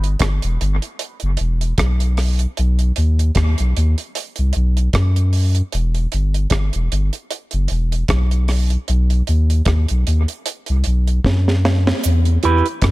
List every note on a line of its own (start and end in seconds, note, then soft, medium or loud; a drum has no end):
0.00 0.16 G1 medium
0.00 closed hi-hat soft
0.19 0.40 G1 medium
0.19 kick medium
0.19 cross-stick loud
0.19 closed hi-hat medium
0.42 0.58 E1 medium
0.42 closed hi-hat medium
0.61 0.80 G1 loud
0.61 closed hi-hat medium
0.82 closed hi-hat medium
0.99 closed hi-hat medium
1.20 1.37 F#1 medium
1.20 closed hi-hat soft
1.37 1.74 E1 medium
1.37 closed hi-hat medium
1.61 closed hi-hat soft
1.78 2.47 B1 medium
1.78 kick loud
1.78 cross-stick loud
1.78 closed hi-hat medium
2.00 closed hi-hat medium
2.17 cross-stick medium
2.17 open hi-hat medium
2.39 closed hi-hat medium
2.57 2.92 B1 loud
2.57 closed hi-hat medium
2.79 closed hi-hat soft
2.96 3.31 D#2 medium
2.96 closed hi-hat medium
3.19 closed hi-hat soft
3.35 3.56 D#2 medium
3.35 kick loud
3.35 cross-stick medium
3.35 closed hi-hat medium
3.58 3.74 B1 medium
3.58 closed hi-hat medium
3.77 3.96 D#2 loud
3.77 closed hi-hat medium
3.98 closed hi-hat medium
4.15 closed hi-hat medium
4.36 4.53 C2 medium
4.36 closed hi-hat medium
4.53 4.89 B1 loud
4.53 closed hi-hat medium
4.77 closed hi-hat medium
4.93 5.62 F#2 medium
4.93 kick loud
4.93 cross-stick loud
4.93 closed hi-hat medium
5.16 closed hi-hat soft
5.33 open hi-hat medium
5.55 closed hi-hat medium
5.72 6.07 E1 loud
5.72 closed hi-hat medium
5.95 closed hi-hat soft
6.12 6.47 G1 medium
6.12 closed hi-hat medium
6.34 closed hi-hat soft
6.50 6.71 G1 medium
6.50 kick loud
6.50 cross-stick loud
6.50 closed hi-hat medium
6.73 6.89 E1 medium
6.73 closed hi-hat medium
6.92 7.11 G1 medium
6.92 closed hi-hat medium
7.13 closed hi-hat medium
7.30 closed hi-hat medium
7.51 7.68 F#1 medium
7.51 closed hi-hat medium
7.68 8.04 E1 medium
7.68 closed hi-hat medium
7.92 closed hi-hat soft
8.08 8.77 B1 medium
8.08 kick loud
8.08 cross-stick loud
8.08 closed hi-hat medium
8.31 closed hi-hat soft
8.48 cross-stick medium
8.48 open hi-hat medium
8.70 closed hi-hat medium
8.88 9.23 B1 loud
8.88 closed hi-hat medium
9.10 closed hi-hat soft
9.27 9.62 D#2 loud
9.27 closed hi-hat medium
9.50 closed hi-hat soft
9.65 9.86 D#2 medium
9.65 kick loud
9.65 cross-stick loud
9.65 closed hi-hat medium
9.88 10.05 B1 medium
9.88 closed hi-hat medium
10.07 10.26 D#2 medium
10.07 closed hi-hat medium
10.28 closed hi-hat medium
10.46 closed hi-hat medium
10.66 10.84 C2 medium
10.66 closed hi-hat medium
10.84 11.20 B1 medium
10.84 closed hi-hat medium
11.07 closed hi-hat soft
11.25 11.93 F#2 medium
11.25 kick loud
11.25 snare medium
11.48 snare soft
11.65 snare medium
11.87 snare medium
12.04 12.39 E2 loud
12.04 closed hi-hat medium
12.04 cabasa medium
12.25 closed hi-hat soft
12.43 12.63 E2 loud
12.43 12.65 E4 medium
12.43 12.65 G4 medium
12.43 12.66 B4 loud
12.43 closed hi-hat medium
12.66 closed hi-hat medium
12.82 12.91 F#2 medium
12.82 kick loud
12.82 cross-stick loud
12.82 closed hi-hat loud